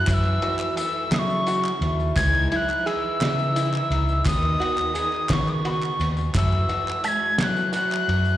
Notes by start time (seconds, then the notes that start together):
Already playing: F#6
0.07 F#2 E3 F#3 A3 C#4 E4 F#6, kick, clap, ride, tambourine
0.14 E6
0.25 clap
0.42 A3 C#4 E4 F#4, ride
0.59 clap
0.76 E3 F#3 A3 C#4 A4 E6, ride, tambourine
0.80 E4
1.11 C#3 F#3 A3 C#4 E4 D#6, snare, clap, ride
1.19 C#6
1.30 tambourine
1.47 F#3 A3 C#4 E4 F#4, ride, tambourine
1.64 clap
1.81 D#2 C#4 E4, ride
1.85 A3
2.00 tambourine
2.16 C#2 C#3 E3 G#3 D#4 E4 G#6, kick, clap, ride, tambourine
2.35 clap
2.51 F#3 D#4 E4 G#6, ride
2.55 G#3 F#6
2.69 clap
2.85 E3 G#3 D#4 G#4 E6, ride
2.90 E4
3.21 C#3 E3 G#3 D#4 E4, snare, clap, ride
3.39 tambourine
3.56 E3 G#3 D#4 E4, ride, tambourine
3.74 clap
3.90 C#2 G#3 D#4 E4, ride
4.09 tambourine
4.25 D#2 D#3 B3 C#4 F#4 D#6, kick, clap, ride, tambourine
4.43 clap
4.60 B3 C#4 F#4, ride
4.78 clap, tambourine
4.94 D#3 B3 C#4 G#4, ride, tambourine
4.99 F#4
5.13 clap
5.29 C#3 D#3 B3 C#4 F#4, kick, snare, clap, ride
5.33 C#6
5.47 D#6, clap
5.53 C#6
5.65 D#3 B3 C#4 F#4 B5, ride
5.70 C#6
5.83 clap
6.00 D#2 B3 C#4 F#4, ride, tambourine
6.17 clap, tambourine
6.34 F#2 C#3 E3 A3 C#4 F#4 E6, kick, clap, ride, tambourine
6.53 clap
6.69 A3 C#4 F#4, ride
6.73 E3
6.88 clap
7.04 E3 G#3 C#4 F#4 A5 B6, ride, tambourine
7.08 G#6
7.38 F#2 C#3 E3 F#3 A3 C#4 F#4 G#6, snare, clap, ride
7.44 F#6
7.56 tambourine
7.72 E3 F#3 A3 C#4 F#4 F#6, ride, tambourine
7.92 clap
8.08 F#2 E3 A3 C#4 F#4, ride
8.25 tambourine